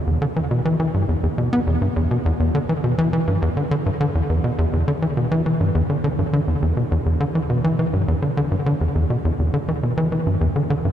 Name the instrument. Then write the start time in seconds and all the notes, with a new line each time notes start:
analog synth bass
0.07 E2
0.22 D3
0.36 E3
0.51 B2
0.65 E3
0.80 E3
0.94 G2
1.09 E2
1.23 E2
1.38 B2
1.53 B3
1.67 E2
1.82 G2
1.96 E2
2.11 B2
2.26 E2
2.40 E2
2.55 D3
2.69 E3
2.84 B2
2.98 E3
3.13 E3
3.28 G2
3.42 E2
3.57 D3
3.71 D3
3.86 G2
4.01 D3
4.15 E2
4.30 E2
4.44 B2
4.59 E2
4.73 E2
4.88 D3
5.02 E3
5.17 B2
5.31 E3
5.46 E3
5.61 G2
5.75 E2
5.90 D3
6.04 D3
6.19 G2
6.33 D3
6.48 E2
6.62 E2
6.77 B2
6.92 E2
7.06 E2
7.20 D3
7.35 E3
7.50 B2
7.64 E3
7.79 E3
7.93 G2
8.08 E2
8.22 D3
8.37 D3
8.52 G2
8.66 D3
8.81 E2
8.95 E2
9.10 B2
9.25 E2
9.39 E2
9.54 D3
9.69 E3
9.83 B2
9.97 E3
10.12 E3
10.27 G2
10.41 E2
10.56 D3
10.70 D3
10.85 G2